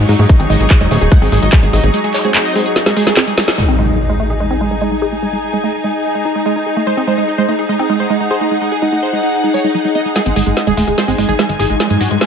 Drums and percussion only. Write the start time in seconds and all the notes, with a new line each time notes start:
0.09 open hi-hat
0.19 open hi-hat
0.29 kick, closed hi-hat
0.40 closed hi-hat
0.50 open hi-hat
0.60 closed hi-hat
0.70 kick, clap, closed hi-hat
0.81 closed hi-hat
0.91 open hi-hat
1.01 closed hi-hat
1.12 kick, closed hi-hat
1.22 open hi-hat
1.32 open hi-hat
1.42 closed hi-hat
1.53 kick, clap, closed hi-hat
1.63 closed hi-hat
1.73 open hi-hat
1.84 closed hi-hat
1.94 closed hi-hat
2.04 closed hi-hat
2.14 clap, open hi-hat
2.25 closed hi-hat
2.35 clap, closed hi-hat
2.45 closed hi-hat
2.55 open hi-hat
2.66 closed hi-hat
2.76 snare, closed hi-hat
2.86 snare, closed hi-hat
2.97 open hi-hat
3.07 snare, closed hi-hat
3.17 snare, clap, closed hi-hat
3.27 closed hi-hat
3.38 snare, open hi-hat
3.48 snare, open hi-hat
10.16 snare, closed hi-hat
10.26 closed hi-hat
10.36 open hi-hat
10.47 closed hi-hat
10.57 snare, closed hi-hat
10.67 closed hi-hat
10.77 open hi-hat
10.88 closed hi-hat
10.98 snare, closed hi-hat
11.08 open hi-hat
11.18 open hi-hat
11.29 closed hi-hat
11.39 snare, closed hi-hat
11.49 closed hi-hat
11.60 open hi-hat
11.70 closed hi-hat
11.80 snare, closed hi-hat
11.90 closed hi-hat
12.01 open hi-hat
12.11 closed hi-hat
12.21 snare, closed hi-hat